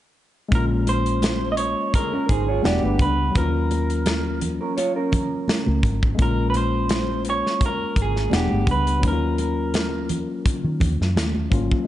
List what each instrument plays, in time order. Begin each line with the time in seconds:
0.49 fingered electric bass A#1, tine electric piano G#3 A#3, kick, closed hi-hat
0.53 tine electric piano C#4 F4, clean electric guitar A#4, muted conga
0.87 clean electric guitar C5, closed hi-hat, muted conga
1.06 closed hi-hat
1.22 snare, closed hi-hat, high conga
1.52 clean electric guitar D#5
1.57 clean electric guitar C#5, closed hi-hat
1.94 clean electric guitar C4 G#4 A#4, kick, closed hi-hat
2.12 clean electric guitar C#4 A#4
2.29 fingered electric bass G#1, clean electric guitar D#4 G#4 C5, kick, closed hi-hat
2.48 clean electric guitar F4 C#5
2.62 fingered electric bass E1, tine electric piano G3 B3 D4 F#5, clean electric guitar D5, snare, closed hi-hat, high conga
2.66 clean electric guitar F#4 G4
2.83 fingered electric bass G1, clean electric guitar D4 B4, high conga
2.99 fingered electric bass C#2, clean electric guitar B4, kick, closed hi-hat
3.31 tine electric piano F#3 A#3, muted conga
3.35 fingered electric bass D#2, tine electric piano C#4 F4, clean electric guitar A#4, kick, closed hi-hat
3.71 closed hi-hat, muted conga
3.90 closed hi-hat
4.06 snare, closed hi-hat, high conga
4.41 closed hi-hat, low conga
4.61 clean electric guitar C#4 A#4
4.77 clean electric guitar F4 C#5, closed hi-hat, muted conga
4.96 clean electric guitar C#4 A#4
5.12 kick, closed hi-hat, low conga
5.48 snare, closed hi-hat, high conga
5.66 fingered electric bass C#2, high conga
5.83 fingered electric bass G#1, kick, closed hi-hat
6.03 kick
6.15 tine electric piano G#3 A#3
6.19 fingered electric bass A#1, tine electric piano C#4 F4, clean electric guitar A#4, kick, closed hi-hat, muted conga
6.50 clean electric guitar B4
6.54 clean electric guitar C5, closed hi-hat, muted conga
6.89 snare, closed hi-hat, high conga
7.25 closed hi-hat
7.30 clean electric guitar C#5
7.47 snare
7.61 kick, closed hi-hat, muted conga
7.66 clean electric guitar A#4
7.96 fingered electric bass G#1, kick, closed hi-hat
8.02 clean electric guitar G#4
8.16 snare
8.30 fingered electric bass E1, tine electric piano G3 B3 D4 F#5, snare, closed hi-hat, high conga
8.36 clean electric guitar G4
8.50 fingered electric bass G1, high conga
8.67 fingered electric bass C#2, kick, closed hi-hat
8.71 clean electric guitar B4
8.87 closed hi-hat
8.99 tine electric piano F#3 A#3
9.03 fingered electric bass D#2, tine electric piano C#4 D#4, kick, closed hi-hat, muted conga
9.08 clean electric guitar A#4
9.13 tine electric piano F4
9.38 closed hi-hat, muted conga
9.74 snare, closed hi-hat, high conga
10.09 closed hi-hat, low conga
10.46 kick, closed hi-hat
10.64 fingered electric bass D#3
10.80 fingered electric bass D#2, kick, closed hi-hat, low conga
11.01 fingered electric bass F#2, snare
11.16 fingered electric bass D#2, snare, closed hi-hat, high conga
11.35 high conga
11.50 fingered electric bass G#1, tine electric piano F#3 A#3 C#4 F4, kick, closed hi-hat
11.71 kick